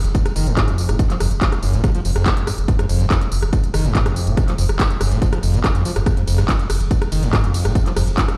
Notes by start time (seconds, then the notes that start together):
Already playing: impact
0.04 F1, closed hi-hat, tambourine
0.15 kick, closed hi-hat, tambourine
0.26 cross-stick, closed hi-hat, tambourine
0.36 F1 D#3, open hi-hat, tambourine
0.47 F1 G#2, closed hi-hat, tambourine
0.57 kick, cross-stick, clap, closed hi-hat, tambourine
0.68 F1 F2, closed hi-hat, tambourine
0.78 open hi-hat, tambourine
0.89 F1 A#2, cross-stick, closed hi-hat, tambourine
0.99 F3, kick, closed hi-hat, tambourine
1.10 F3, clap, closed hi-hat, tambourine
1.20 F1 F2, cross-stick, open hi-hat, tambourine
1.31 F1, closed hi-hat, tambourine
1.41 kick, clap, closed hi-hat, tambourine
1.52 cross-stick, closed hi-hat, tambourine
1.63 F1 F#2, open hi-hat, tambourine
1.73 F1 A#2, closed hi-hat, tambourine
1.84 F3, kick, cross-stick, closed hi-hat, tambourine
1.95 F3, closed hi-hat, tambourine
2.05 F1 F2, open hi-hat, tambourine
2.16 F1 F2, cross-stick, closed hi-hat, tambourine
2.26 A#2, kick, clap, closed hi-hat, tambourine
2.37 F1, closed hi-hat, tambourine
2.47 F#2, cross-stick, open hi-hat, tambourine
2.58 F1, closed hi-hat, tambourine
2.68 F2, kick, closed hi-hat, tambourine
2.79 F2, cross-stick, closed hi-hat, tambourine
2.89 F1 F2, open hi-hat, tambourine
3.00 F1 G#2, closed hi-hat, tambourine
3.11 F2, kick, cross-stick, clap, closed hi-hat, tambourine
3.21 closed hi-hat, tambourine
3.32 F1, open hi-hat, tambourine
3.42 F1, cross-stick, closed hi-hat, tambourine
3.53 kick, closed hi-hat, tambourine
3.64 closed hi-hat, tambourine
3.74 F1 D#3, cross-stick, open hi-hat, tambourine
3.85 F1 G#2, closed hi-hat, tambourine
3.95 kick, clap, closed hi-hat, tambourine
4.06 F1 F2, cross-stick, closed hi-hat, tambourine
4.16 open hi-hat, tambourine
4.27 F1 A#2, closed hi-hat, tambourine
4.37 F3, kick, cross-stick, closed hi-hat, tambourine
4.48 F3, clap, closed hi-hat, tambourine
4.58 F1 F2, open hi-hat, tambourine
4.69 F1, cross-stick, closed hi-hat, tambourine
4.80 kick, clap, closed hi-hat, tambourine
4.90 closed hi-hat, tambourine
5.01 F1 F#2, cross-stick, open hi-hat, tambourine
5.11 F1 A#2, closed hi-hat, tambourine
5.22 F3, kick, closed hi-hat, tambourine
5.33 F3, cross-stick, closed hi-hat, tambourine
5.43 F1 F2, open hi-hat, tambourine
5.54 F1 C3, closed hi-hat, tambourine
5.64 D#2, kick, cross-stick, clap, closed hi-hat, tambourine
5.75 F1 F2, closed hi-hat, tambourine
5.85 F3, open hi-hat, tambourine
5.96 F1 F#2, cross-stick, closed hi-hat, tambourine
6.06 F2, kick, cross-stick, closed hi-hat, tambourine
6.17 F2, closed hi-hat, tambourine
6.27 F1 F2, open hi-hat, ride, tambourine
6.38 F1 G#2, cross-stick, closed hi-hat, tambourine
6.49 F2, kick, clap, closed hi-hat, tambourine
6.59 closed hi-hat, tambourine
6.70 F1, cross-stick, open hi-hat, ride, tambourine
6.81 F1, closed hi-hat, tambourine
6.91 kick, closed hi-hat, tambourine
7.02 cross-stick, closed hi-hat, tambourine
7.12 F1 D#3, open hi-hat, ride, tambourine
7.23 F1 G#2, closed hi-hat, tambourine
7.33 kick, cross-stick, clap, closed hi-hat, tambourine
7.44 F1 F2, closed hi-hat, tambourine
7.54 open hi-hat, ride, tambourine
7.65 F1 A#2, cross-stick, closed hi-hat, tambourine
7.75 F3, kick, closed hi-hat, tambourine
7.86 F3, clap, closed hi-hat, tambourine
7.96 F1 F2, cross-stick, open hi-hat, ride, tambourine
8.07 F1, closed hi-hat, tambourine
8.18 kick, clap, closed hi-hat, tambourine
8.28 cross-stick, closed hi-hat, tambourine